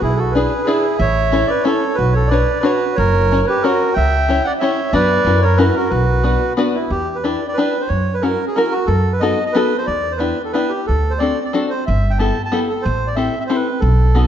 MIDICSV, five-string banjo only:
0, 0, Header, 1, 2, 480
1, 0, Start_track
1, 0, Key_signature, 2, "minor"
1, 0, Tempo, 328228
1, 39, Time_signature, 3, 2, 24, 8
1, 10115, Key_signature, 1, "minor"
1, 20868, End_track
2, 0, Start_track
2, 0, Title_t, "Five-string banjo"
2, 0, Program_c, 0, 105
2, 512, Note_on_c, 0, 62, 48
2, 523, Note_on_c, 0, 64, 43
2, 532, Note_on_c, 0, 68, 51
2, 538, Note_on_c, 0, 71, 56
2, 764, Note_off_c, 0, 62, 0
2, 770, Note_off_c, 0, 64, 0
2, 775, Note_off_c, 0, 68, 0
2, 775, Note_off_c, 0, 71, 0
2, 979, Note_on_c, 0, 62, 68
2, 982, Note_on_c, 0, 64, 61
2, 990, Note_on_c, 0, 68, 68
2, 1000, Note_on_c, 0, 71, 65
2, 1234, Note_off_c, 0, 62, 0
2, 1237, Note_off_c, 0, 64, 0
2, 1241, Note_off_c, 0, 68, 0
2, 1246, Note_off_c, 0, 71, 0
2, 1929, Note_on_c, 0, 61, 50
2, 1940, Note_on_c, 0, 64, 60
2, 1946, Note_on_c, 0, 69, 48
2, 1952, Note_on_c, 0, 73, 59
2, 2185, Note_off_c, 0, 61, 0
2, 2190, Note_off_c, 0, 64, 0
2, 2193, Note_off_c, 0, 69, 0
2, 2197, Note_off_c, 0, 73, 0
2, 2410, Note_on_c, 0, 61, 62
2, 2416, Note_on_c, 0, 64, 66
2, 2428, Note_on_c, 0, 69, 59
2, 2445, Note_on_c, 0, 73, 68
2, 2666, Note_off_c, 0, 61, 0
2, 2669, Note_off_c, 0, 64, 0
2, 2675, Note_off_c, 0, 69, 0
2, 2683, Note_off_c, 0, 73, 0
2, 3382, Note_on_c, 0, 62, 51
2, 3388, Note_on_c, 0, 66, 46
2, 3397, Note_on_c, 0, 71, 48
2, 3407, Note_on_c, 0, 73, 54
2, 3634, Note_off_c, 0, 62, 0
2, 3637, Note_off_c, 0, 66, 0
2, 3642, Note_off_c, 0, 71, 0
2, 3644, Note_off_c, 0, 73, 0
2, 3846, Note_on_c, 0, 62, 67
2, 3858, Note_on_c, 0, 66, 62
2, 3869, Note_on_c, 0, 71, 56
2, 3881, Note_on_c, 0, 73, 68
2, 4116, Note_off_c, 0, 62, 0
2, 4122, Note_off_c, 0, 66, 0
2, 4128, Note_off_c, 0, 71, 0
2, 4131, Note_off_c, 0, 73, 0
2, 4854, Note_on_c, 0, 61, 51
2, 4860, Note_on_c, 0, 66, 41
2, 4868, Note_on_c, 0, 70, 52
2, 4880, Note_on_c, 0, 73, 60
2, 5105, Note_off_c, 0, 61, 0
2, 5108, Note_off_c, 0, 66, 0
2, 5111, Note_off_c, 0, 70, 0
2, 5118, Note_off_c, 0, 73, 0
2, 5319, Note_on_c, 0, 61, 65
2, 5326, Note_on_c, 0, 66, 55
2, 5336, Note_on_c, 0, 70, 61
2, 5338, Note_on_c, 0, 73, 67
2, 5578, Note_off_c, 0, 61, 0
2, 5581, Note_off_c, 0, 66, 0
2, 5586, Note_off_c, 0, 70, 0
2, 5586, Note_off_c, 0, 73, 0
2, 6267, Note_on_c, 0, 61, 47
2, 6276, Note_on_c, 0, 64, 50
2, 6283, Note_on_c, 0, 67, 45
2, 6291, Note_on_c, 0, 73, 57
2, 6523, Note_off_c, 0, 61, 0
2, 6528, Note_off_c, 0, 64, 0
2, 6532, Note_off_c, 0, 67, 0
2, 6536, Note_off_c, 0, 73, 0
2, 6746, Note_on_c, 0, 61, 61
2, 6761, Note_on_c, 0, 64, 58
2, 6763, Note_on_c, 0, 67, 62
2, 6775, Note_on_c, 0, 73, 64
2, 7000, Note_off_c, 0, 61, 0
2, 7007, Note_off_c, 0, 64, 0
2, 7009, Note_off_c, 0, 67, 0
2, 7014, Note_off_c, 0, 73, 0
2, 7214, Note_on_c, 0, 59, 54
2, 7216, Note_on_c, 0, 62, 55
2, 7226, Note_on_c, 0, 66, 61
2, 7235, Note_on_c, 0, 71, 54
2, 7603, Note_off_c, 0, 59, 0
2, 7603, Note_off_c, 0, 62, 0
2, 7609, Note_off_c, 0, 66, 0
2, 7614, Note_off_c, 0, 71, 0
2, 7694, Note_on_c, 0, 61, 50
2, 7704, Note_on_c, 0, 64, 55
2, 7710, Note_on_c, 0, 66, 53
2, 7714, Note_on_c, 0, 70, 56
2, 7951, Note_off_c, 0, 61, 0
2, 7953, Note_off_c, 0, 64, 0
2, 7958, Note_off_c, 0, 66, 0
2, 7958, Note_off_c, 0, 70, 0
2, 8159, Note_on_c, 0, 61, 66
2, 8167, Note_on_c, 0, 64, 65
2, 8176, Note_on_c, 0, 66, 57
2, 8186, Note_on_c, 0, 70, 77
2, 8424, Note_off_c, 0, 61, 0
2, 8428, Note_off_c, 0, 64, 0
2, 8432, Note_off_c, 0, 66, 0
2, 8437, Note_off_c, 0, 70, 0
2, 9118, Note_on_c, 0, 59, 50
2, 9125, Note_on_c, 0, 62, 45
2, 9134, Note_on_c, 0, 66, 50
2, 9137, Note_on_c, 0, 71, 49
2, 9387, Note_off_c, 0, 59, 0
2, 9391, Note_off_c, 0, 62, 0
2, 9395, Note_off_c, 0, 71, 0
2, 9396, Note_off_c, 0, 66, 0
2, 9607, Note_on_c, 0, 59, 68
2, 9619, Note_on_c, 0, 62, 66
2, 9629, Note_on_c, 0, 66, 71
2, 9634, Note_on_c, 0, 71, 87
2, 9879, Note_off_c, 0, 59, 0
2, 9885, Note_off_c, 0, 62, 0
2, 9890, Note_off_c, 0, 66, 0
2, 9892, Note_off_c, 0, 71, 0
2, 10585, Note_on_c, 0, 62, 47
2, 10595, Note_on_c, 0, 67, 46
2, 10597, Note_on_c, 0, 64, 51
2, 10602, Note_on_c, 0, 71, 53
2, 10851, Note_off_c, 0, 62, 0
2, 10855, Note_off_c, 0, 64, 0
2, 10856, Note_off_c, 0, 67, 0
2, 10859, Note_off_c, 0, 71, 0
2, 11079, Note_on_c, 0, 62, 62
2, 11091, Note_on_c, 0, 64, 56
2, 11094, Note_on_c, 0, 67, 55
2, 11102, Note_on_c, 0, 71, 73
2, 11337, Note_off_c, 0, 62, 0
2, 11343, Note_off_c, 0, 64, 0
2, 11345, Note_off_c, 0, 67, 0
2, 11349, Note_off_c, 0, 71, 0
2, 12032, Note_on_c, 0, 61, 49
2, 12038, Note_on_c, 0, 64, 46
2, 12047, Note_on_c, 0, 66, 49
2, 12053, Note_on_c, 0, 70, 47
2, 12289, Note_off_c, 0, 61, 0
2, 12292, Note_off_c, 0, 64, 0
2, 12296, Note_off_c, 0, 66, 0
2, 12299, Note_off_c, 0, 70, 0
2, 12516, Note_on_c, 0, 61, 53
2, 12526, Note_on_c, 0, 64, 52
2, 12538, Note_on_c, 0, 66, 61
2, 12545, Note_on_c, 0, 70, 79
2, 12768, Note_off_c, 0, 61, 0
2, 12773, Note_off_c, 0, 64, 0
2, 12779, Note_off_c, 0, 66, 0
2, 12783, Note_off_c, 0, 70, 0
2, 13470, Note_on_c, 0, 59, 53
2, 13486, Note_on_c, 0, 63, 56
2, 13494, Note_on_c, 0, 69, 60
2, 13496, Note_on_c, 0, 66, 49
2, 13725, Note_off_c, 0, 59, 0
2, 13733, Note_off_c, 0, 63, 0
2, 13736, Note_off_c, 0, 69, 0
2, 13737, Note_off_c, 0, 66, 0
2, 13961, Note_on_c, 0, 59, 67
2, 13970, Note_on_c, 0, 63, 63
2, 13979, Note_on_c, 0, 66, 56
2, 13986, Note_on_c, 0, 69, 72
2, 14214, Note_off_c, 0, 59, 0
2, 14215, Note_off_c, 0, 63, 0
2, 14222, Note_off_c, 0, 66, 0
2, 14224, Note_off_c, 0, 69, 0
2, 14901, Note_on_c, 0, 59, 44
2, 14912, Note_on_c, 0, 62, 44
2, 14915, Note_on_c, 0, 64, 54
2, 14923, Note_on_c, 0, 67, 54
2, 15166, Note_off_c, 0, 59, 0
2, 15172, Note_off_c, 0, 62, 0
2, 15174, Note_off_c, 0, 64, 0
2, 15178, Note_off_c, 0, 67, 0
2, 15407, Note_on_c, 0, 59, 51
2, 15417, Note_on_c, 0, 64, 52
2, 15421, Note_on_c, 0, 62, 55
2, 15431, Note_on_c, 0, 67, 58
2, 15665, Note_off_c, 0, 59, 0
2, 15669, Note_off_c, 0, 62, 0
2, 15671, Note_off_c, 0, 64, 0
2, 15677, Note_off_c, 0, 67, 0
2, 16381, Note_on_c, 0, 60, 48
2, 16396, Note_on_c, 0, 62, 43
2, 16403, Note_on_c, 0, 66, 40
2, 16415, Note_on_c, 0, 69, 53
2, 16638, Note_off_c, 0, 60, 0
2, 16645, Note_off_c, 0, 62, 0
2, 16651, Note_off_c, 0, 66, 0
2, 16652, Note_off_c, 0, 69, 0
2, 16864, Note_on_c, 0, 60, 58
2, 16873, Note_on_c, 0, 62, 56
2, 16881, Note_on_c, 0, 66, 64
2, 16890, Note_on_c, 0, 69, 68
2, 17117, Note_off_c, 0, 60, 0
2, 17122, Note_off_c, 0, 62, 0
2, 17126, Note_off_c, 0, 66, 0
2, 17128, Note_off_c, 0, 69, 0
2, 17829, Note_on_c, 0, 59, 46
2, 17842, Note_on_c, 0, 64, 45
2, 17844, Note_on_c, 0, 67, 47
2, 17857, Note_on_c, 0, 69, 59
2, 18080, Note_off_c, 0, 59, 0
2, 18086, Note_off_c, 0, 64, 0
2, 18088, Note_off_c, 0, 67, 0
2, 18094, Note_off_c, 0, 69, 0
2, 18306, Note_on_c, 0, 59, 63
2, 18314, Note_on_c, 0, 64, 60
2, 18321, Note_on_c, 0, 67, 60
2, 18329, Note_on_c, 0, 69, 67
2, 18555, Note_off_c, 0, 59, 0
2, 18559, Note_off_c, 0, 64, 0
2, 18563, Note_off_c, 0, 67, 0
2, 18567, Note_off_c, 0, 69, 0
2, 19252, Note_on_c, 0, 60, 47
2, 19259, Note_on_c, 0, 64, 42
2, 19272, Note_on_c, 0, 67, 53
2, 19279, Note_on_c, 0, 69, 57
2, 19503, Note_off_c, 0, 60, 0
2, 19506, Note_off_c, 0, 64, 0
2, 19513, Note_off_c, 0, 67, 0
2, 19515, Note_off_c, 0, 69, 0
2, 19735, Note_on_c, 0, 60, 58
2, 19744, Note_on_c, 0, 67, 57
2, 19749, Note_on_c, 0, 64, 56
2, 19754, Note_on_c, 0, 69, 67
2, 19980, Note_off_c, 0, 60, 0
2, 19985, Note_off_c, 0, 64, 0
2, 19986, Note_off_c, 0, 67, 0
2, 19990, Note_off_c, 0, 69, 0
2, 20689, Note_on_c, 0, 59, 59
2, 20700, Note_on_c, 0, 63, 47
2, 20704, Note_on_c, 0, 66, 42
2, 20709, Note_on_c, 0, 69, 54
2, 20868, Note_off_c, 0, 59, 0
2, 20868, Note_off_c, 0, 63, 0
2, 20868, Note_off_c, 0, 66, 0
2, 20868, Note_off_c, 0, 69, 0
2, 20868, End_track
0, 0, End_of_file